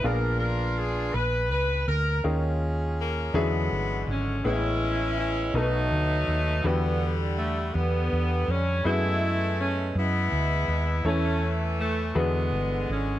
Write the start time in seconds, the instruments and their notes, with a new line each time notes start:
0.03 fingered electric bass A#1, grand piano A#2 A#3 B3 D4 F4 G#4, saxophone section D4 F4 A#4
0.39 saxophone section A#4
0.77 saxophone section G#4
1.14 fingered electric bass A#1, saxophone section B4
1.51 fingered electric bass C#2, saxophone section B4
1.87 fingered electric bass D2, saxophone section A#4
2.24 fingered electric bass D#2, grand piano D#3 C#4 D#4 F4 G#4 A#4, saxophone section C#4 F4 G#4
2.99 saxophone section A#3
3.34 fingered electric bass E2, grand piano D3 E3 F#3 C#4 G#4 E5, saxophone section D3 G#3 B3
3.71 fingered electric bass G1
4.07 fingered electric bass G#1, saxophone section C#4
4.44 fingered electric bass A1, grand piano A2 B3 C#4 E4 G#4 B4, saxophone section G#3 C#4 E4
5.19 saxophone section E4
5.54 fingered electric bass B1, grand piano B2 B3 D#4 F#4 A4 A#4, saxophone section F#3 A3 D#4
5.62 grand piano B4
5.91 fingered electric bass D2
6.28 fingered electric bass D#2
6.64 fingered electric bass E2, grand piano D3 E3 E4 F#4 G4 B4, saxophone section D3 G3 B3
7.37 saxophone section A3
7.74 fingered electric bass E2, saxophone section D3 G3 B3
8.13 fingered electric bass E2
8.48 fingered electric bass F2, saxophone section C#4
8.84 fingered electric bass F#2, saxophone section G#3 A3 E4, grand piano B3 E4 F#4 G#4 B4
9.60 saxophone section C#4
9.96 fingered electric bass F#2, saxophone section G#3 B3 E4
10.32 fingered electric bass D2
10.68 fingered electric bass D#2
11.05 fingered electric bass E2, grand piano E3 A3 C#4 E4 A4 C#5, saxophone section E3 A3 C#4
11.80 saxophone section A3
12.15 fingered electric bass E2, grand piano D3 E3 E4 F#4 G#4 B4, saxophone section D3 G#3 B3
12.52 fingered electric bass G1
12.89 fingered electric bass G#1, saxophone section C#4